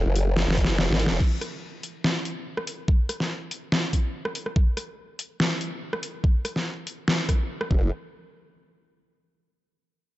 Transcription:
0.06 0.46 F#1 loud
0.16 closed hi-hat medium
0.37 snare medium
0.48 0.88 F#1 loud
0.48 snare medium
0.57 kick medium
0.57 closed hi-hat medium
0.65 snare medium
0.78 snare medium
0.90 1.09 G#1 loud
0.90 snare loud
0.99 open hi-hat loud
1.06 snare loud
1.10 1.19 E1 loud
1.20 kick loud
1.20 crash medium
1.41 cross-stick medium
1.41 closed hi-hat medium
1.83 closed hi-hat medium
2.04 snare loud
2.25 closed hi-hat medium
2.57 cross-stick medium
2.67 open hi-hat medium
2.88 kick loud
3.09 cross-stick medium
3.09 closed hi-hat medium
3.20 snare soft
3.51 closed hi-hat medium
3.72 snare loud
3.93 kick medium
3.93 closed hi-hat medium
4.25 cross-stick medium
4.35 open hi-hat medium
4.46 cross-stick medium
4.56 kick loud
4.77 cross-stick soft
4.77 closed hi-hat medium
5.19 closed hi-hat medium
5.40 snare loud
5.61 closed hi-hat medium
5.93 cross-stick medium
6.03 open hi-hat medium
6.24 kick loud
6.45 cross-stick medium
6.45 closed hi-hat medium
6.56 snare soft
6.87 closed hi-hat medium
7.08 snare loud
7.29 kick medium
7.29 cross-stick medium
7.29 closed hi-hat medium
7.61 cross-stick medium
7.71 7.90 F#1 loud
7.71 kick loud

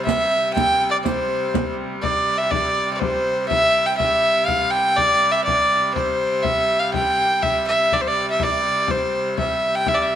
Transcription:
0.00 2.01 C3 medium
0.00 2.02 G3 medium
0.05 0.52 E5 medium
0.05 riq medium
0.05 frame drum medium
0.32 frame drum soft
0.54 0.89 G5 loud
0.54 riq medium
0.54 frame drum medium
0.81 riq soft
0.91 0.97 D5 medium
1.04 1.74 C5 medium
1.04 riq medium
1.04 frame drum medium
1.54 riq medium
1.54 frame drum medium
1.79 frame drum soft
2.01 7.90 C3 medium
2.01 7.90 G3 medium
2.01 2.39 D5 medium
2.01 frame drum medium
2.28 frame drum soft
2.38 2.52 E5 medium
2.51 2.93 D5 medium
2.51 frame drum medium
2.93 3.01 D5 medium
3.00 3.48 C5 medium
3.00 frame drum medium
3.48 3.88 E5 loud
3.48 frame drum medium
3.75 frame drum soft
3.86 3.97 G5 medium
3.97 4.48 E5 loud
3.97 frame drum medium
4.46 4.72 F5 medium
4.46 frame drum medium
4.71 4.98 G5 medium
4.96 5.33 D5 loud
4.96 frame drum medium
5.22 frame drum soft
5.32 5.43 E5 medium
5.44 5.90 D5 medium
5.44 frame drum medium
5.94 6.45 C5 medium
5.94 frame drum medium
6.43 6.81 E5 medium
6.43 frame drum medium
6.80 6.92 F5 medium
6.94 7.44 G5 loud
6.94 frame drum medium
7.19 frame drum soft
7.42 7.66 E5 medium
7.42 frame drum medium
7.67 7.95 E5 medium
7.67 frame drum soft
7.90 10.15 C3 medium
7.90 10.15 G3 medium
7.90 8.03 D5 medium
7.90 frame drum medium
8.01 8.09 C5 medium
8.08 8.29 D5 medium
8.17 frame drum soft
8.30 8.45 E5 medium
8.40 8.92 D5 medium
8.40 frame drum medium
8.88 9.38 C5 medium
8.88 frame drum medium
9.38 9.76 E5 medium
9.38 frame drum medium
9.62 frame drum soft
9.75 9.90 G5 medium
9.86 9.96 E5 medium
9.86 frame drum medium
9.95 10.04 D5 medium
10.03 10.15 E5 medium

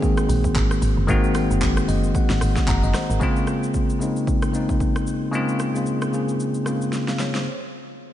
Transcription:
0.00 1.07 D#3 loud
0.00 1.08 G#3 loud
0.00 1.09 A#3 loud
0.00 1.10 C4 loud
0.00 1.11 F#4 loud
0.00 0.77 G#4 loud
0.00 kick loud
0.00 shaker medium
0.17 cross-stick loud
0.17 shaker medium
0.29 0.54 A#1 loud
0.29 open hi-hat medium
0.29 shaker loud
0.44 kick loud
0.44 shaker medium
0.56 0.81 G#1 loud
0.56 kick loud
0.56 clap medium
0.56 shaker medium
0.71 cross-stick loud
0.71 shaker medium
0.82 0.97 G#1 medium
0.82 open hi-hat medium
0.82 shaker medium
0.97 1.08 F#1 medium
1.07 1.48 G#1 loud
1.07 1.94 D#3 loud
1.07 1.94 G#3 loud
1.07 1.95 A#3 loud
1.07 1.95 C4 loud
1.07 1.95 F#4 loud
1.07 kick loud
1.07 shaker medium
1.24 shaker soft
1.35 cross-stick loud
1.35 open hi-hat medium
1.35 shaker medium
1.50 1.86 F#1 medium
1.50 shaker medium
1.61 kick medium
1.61 clap loud
1.61 shaker medium
1.77 cross-stick loud
1.77 shaker medium
1.88 2.13 F#1 medium
1.88 2.13 D#5 medium
1.88 open hi-hat medium
1.88 shaker medium
2.04 shaker medium
2.15 2.40 F#5 medium
2.15 kick loud
2.15 shaker medium
2.30 2.41 G#1 medium
2.30 snare medium
2.30 shaker medium
2.41 2.56 G#1 medium
2.41 cross-stick loud
2.41 open hi-hat medium
2.41 shaker loud
2.56 kick loud
2.56 snare medium
2.56 shaker medium
2.68 2.82 F#1 loud
2.68 2.83 F#5 medium
2.68 3.17 A#5 medium
2.68 kick loud
2.68 clap medium
2.68 shaker medium
2.83 2.94 F#1 medium
2.83 2.94 D#5 medium
2.83 shaker medium
2.94 3.09 C5 medium
2.94 cross-stick loud
2.94 snare medium
2.94 open hi-hat medium
2.94 shaker medium
3.10 3.20 G#1 loud
3.10 3.35 A#4 medium
3.10 shaker medium
3.19 3.86 C#3 loud
3.19 3.86 G#3 loud
3.19 3.87 A#3 loud
3.19 3.87 C4 loud
3.19 3.88 F4 loud
3.19 kick loud
3.19 shaker medium
3.36 shaker soft
3.47 cross-stick medium
3.47 shaker medium
3.63 shaker medium
3.74 kick medium
3.74 shaker medium
3.90 shaker medium
3.99 4.44 C#3 medium
3.99 4.45 G#3 medium
3.99 4.45 A#3 medium
3.99 4.45 C4 medium
3.99 4.46 D#4 medium
3.99 shaker medium
4.16 shaker soft
4.27 kick loud
4.27 shaker medium
4.42 cross-stick loud
4.42 shaker medium
4.52 5.18 C#3 medium
4.52 5.19 G#3 medium
4.52 5.19 A#3 medium
4.52 5.20 C4 medium
4.52 5.20 D#4 medium
4.52 shaker medium
4.69 kick medium
4.69 shaker medium
4.80 kick medium
4.80 shaker medium
4.96 cross-stick loud
4.96 shaker medium
5.07 shaker medium
5.32 5.65 C#3 loud
5.32 5.66 G#3 loud
5.32 5.66 A#3 loud
5.32 5.67 C4 loud
5.32 5.67 F4 loud
5.32 shaker medium
5.49 shaker soft
5.60 cross-stick medium
5.60 shaker medium
5.74 6.06 C#3 medium
5.74 6.06 G#3 medium
5.74 6.06 A#3 medium
5.74 6.07 C4 medium
5.74 6.07 F4 medium
5.74 shaker medium
5.86 shaker medium
6.02 cross-stick loud
6.02 shaker medium
6.12 6.56 C#3 medium
6.12 6.57 G#3 medium
6.12 6.57 A#3 medium
6.12 6.58 C4 medium
6.12 6.58 G#4 medium
6.12 shaker medium
6.29 shaker soft
6.40 shaker medium
6.54 shaker medium
6.65 7.31 C#3 medium
6.65 7.31 G#3 medium
6.65 7.32 A#3 medium
6.65 7.32 C4 medium
6.65 7.33 F4 medium
6.65 cross-stick medium
6.65 shaker medium
6.82 shaker medium
6.93 snare medium
6.93 shaker medium
7.08 7.19 F5 medium
7.08 snare medium
7.08 shaker soft
7.19 7.34 C#5 medium
7.19 snare medium
7.19 shaker medium
7.35 7.60 C5 medium
7.35 snare medium

